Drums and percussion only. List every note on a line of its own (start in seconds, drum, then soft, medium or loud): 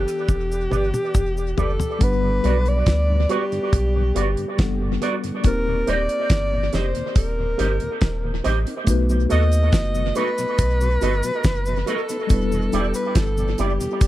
0.08 closed hi-hat soft
0.08 cabasa medium
0.29 kick loud
0.29 high tom soft
0.29 cabasa medium
0.52 cabasa soft
0.71 mid tom medium
0.71 cabasa soft
0.94 mid tom medium
0.94 cabasa medium
1.15 kick loud
1.15 mid tom medium
1.15 cabasa medium
1.37 cabasa soft
1.58 floor tom medium
1.58 cabasa soft
1.80 floor tom medium
1.80 cabasa medium
2.01 kick loud
2.01 closed hi-hat loud
2.44 closed hi-hat medium
2.65 closed hi-hat soft
2.86 kick loud
2.86 snare loud
2.86 closed hi-hat loud
3.29 closed hi-hat medium
3.52 closed hi-hat soft
3.73 kick loud
3.73 closed hi-hat loud
4.16 closed hi-hat medium
4.37 closed hi-hat soft
4.59 kick loud
4.59 snare loud
4.59 closed hi-hat medium
5.02 closed hi-hat medium
5.24 closed hi-hat medium
5.44 kick loud
5.44 closed hi-hat medium
5.87 closed hi-hat medium
6.09 closed hi-hat medium
6.30 kick loud
6.30 snare loud
6.30 closed hi-hat loud
6.73 snare medium
6.73 closed hi-hat medium
6.95 closed hi-hat soft
7.16 kick loud
7.16 closed hi-hat loud
7.59 closed hi-hat medium
7.80 closed hi-hat soft
8.01 kick loud
8.01 snare loud
8.01 closed hi-hat medium
8.44 closed hi-hat medium
8.67 closed hi-hat medium
8.87 kick loud
8.87 closed hi-hat medium
8.87 cabasa medium
9.09 cabasa medium
9.30 closed hi-hat medium
9.30 cabasa soft
9.52 closed hi-hat soft
9.52 cabasa medium
9.72 kick loud
9.72 snare loud
9.72 closed hi-hat loud
9.72 cabasa medium
9.95 cabasa medium
10.15 closed hi-hat medium
10.15 cabasa medium
10.38 closed hi-hat soft
10.38 cabasa medium
10.58 kick loud
10.58 closed hi-hat medium
10.58 cabasa medium
10.81 cabasa medium
11.01 closed hi-hat medium
11.01 cabasa soft
11.23 closed hi-hat soft
11.23 cabasa medium
11.44 kick loud
11.44 snare loud
11.44 closed hi-hat medium
11.44 cabasa medium
11.66 cabasa medium
11.87 closed hi-hat medium
11.87 cabasa soft
12.09 closed hi-hat medium
12.09 cabasa medium
12.30 kick loud
12.30 closed hi-hat medium
12.30 cabasa medium
12.52 cabasa soft
12.72 closed hi-hat medium
12.72 cabasa soft
12.94 closed hi-hat medium
12.94 cabasa medium
13.15 kick loud
13.15 snare loud
13.15 closed hi-hat loud
13.15 cabasa medium
13.37 cabasa soft
13.58 closed hi-hat medium
13.58 cabasa medium
13.80 closed hi-hat soft
13.80 cabasa medium
14.01 kick loud
14.01 closed hi-hat loud
14.01 cabasa medium